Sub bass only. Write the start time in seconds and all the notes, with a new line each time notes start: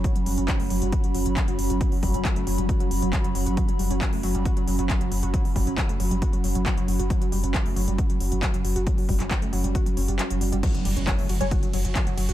0.26 F#1
0.38 F#1
0.60 F#1
0.70 F#1
0.82 F#1
1.15 F#1
1.26 F#1
1.48 F#1
1.59 F#1
1.70 F#1
2.03 F#1
2.14 F#1
2.36 F#1
2.47 F#1
2.58 F#1
2.91 F#1
3.02 F#1
3.24 F#1
3.35 F#1
3.46 F#1
3.79 F#1
3.90 F#1
4.13 F#1
4.23 F#1
4.35 F#1
4.67 F#1
4.79 F#1
5.01 F#1
5.12 F#1
5.23 F#1
5.56 F#1
5.67 F#1
5.89 F#1
6.00 F#1
6.11 F#1
6.44 F#1
6.55 F#1
6.77 F#1
6.88 F#1
6.99 F#1
7.32 F#1
7.43 F#1
7.66 F#1
7.76 F#1
7.88 F#1
8.20 F#1
8.32 F#1
8.54 F#1
8.65 F#1
8.76 F#1
9.09 F#1
9.20 F#1
9.42 F#1
9.53 F#1
9.64 F#1
9.97 F#1
10.08 F#1
10.30 F#1
10.41 F#1
10.52 F#1
10.85 F#1
10.96 F#1
11.19 F#1
11.29 F#1
11.41 F#1
11.73 F#1
11.85 F#1
12.07 F#1
12.17 F#1
12.29 F#1